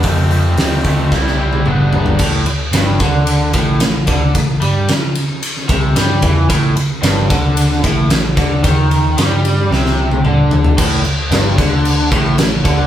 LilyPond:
<<
  \new Staff \with { instrumentName = "Overdriven electric guitar" } { \clef bass \time 4/4 \key a \minor \tempo 4 = 112 <f, c f a c'>8 <f, c f a c'>8 <f, c f a c'>8 <f, c f a c'>8 <c g c' e'>8 <c g c' e'>8 <g, d g b d'>8 <g, d g b d'>8 | a,8 r8 g,8 d4 a,8 a,8 d8 | a,8 g8 r4. c8 g8 e8 | a,8 r8 g,8 d4 a,8 a,8 d8 |
dis4 g4 c4 d4 | a,8 r8 g,8 d4 a,8 a,8 d8 | }
  \new Staff \with { instrumentName = "Picked electric bass" } { \clef bass \time 4/4 \key a \minor f,4 d,4 c,4 g,,4 | a,,8 r8 g,,8 d,4 a,,8 a,,8 d,8 | a,,8 g,8 r4. c,8 g,8 e,8 | a,,8 r8 g,,8 d,4 a,,8 a,,8 d,8 |
dis,4 g,4 c,4 d,4 | a,,8 r8 g,,8 d,4 a,,8 a,,8 d,8 | }
  \new DrumStaff \with { instrumentName = "Drums" } \drummode { \time 4/4 <hho bd>8 hho8 <hho sn>8 <hho bd>8 <bd sn>16 sn8 tommh16 toml8 tomfh16 tomfh16 | <cymc bd>8 cymr8 <cymr sn>8 <bd cymr>8 cymr8 <bd cymr>8 <cymr sn>8 <bd cymr>8 | <bd cymr>8 cymr8 <cymr sn>8 cymr8 cymr16 sn16 <bd cymr>8 <cymr sn>8 <bd cymr>8 | <bd cymr>8 cymr8 <cymr sn>8 <bd cymr>8 cymr16 sn16 <bd cymr>8 <cymr sn>8 <bd cymr>8 |
<bd cymr>8 cymr8 <cymr sn>8 cymr8 sn16 sn8 tommh16 toml8 tomfh16 tomfh16 | <cymc bd>8 cymc8 <cymc sn>8 <cymc bd>8 cymc8 <cymc bd>8 <cymc sn>8 <cymc bd>8 | }
>>